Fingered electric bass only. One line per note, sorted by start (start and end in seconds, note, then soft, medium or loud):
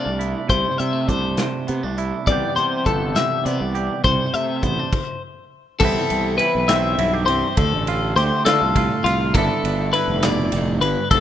0.06 0.33 C2 medium
0.50 0.64 C2 medium
0.80 1.07 C3 medium
1.09 1.36 C2 medium
1.69 1.82 C3 medium
1.84 2.11 C2 medium
2.27 2.41 C2 medium
2.58 2.85 C3 medium
2.86 3.14 G1 medium
3.46 3.59 C3 loud
3.61 3.88 C2 medium
4.04 4.18 C2 medium
4.34 4.61 C3 medium
4.63 4.77 A1 medium
5.81 5.95 C2 loud
6.11 6.38 C2 medium
6.55 6.96 B1 medium
6.99 7.29 B1 loud
7.29 7.42 C2 medium
7.58 7.73 D2 loud
7.73 8.14 A1 medium
8.16 8.30 D2 loud
8.46 8.60 D3 medium
8.62 8.89 C2 medium
9.05 9.32 C2 loud
9.35 9.48 G1 loud
9.64 9.91 G1 medium
10.08 10.49 F1 medium
10.53 10.81 F1 loud
10.81 10.95 G1 medium
11.11 11.20 F1 loud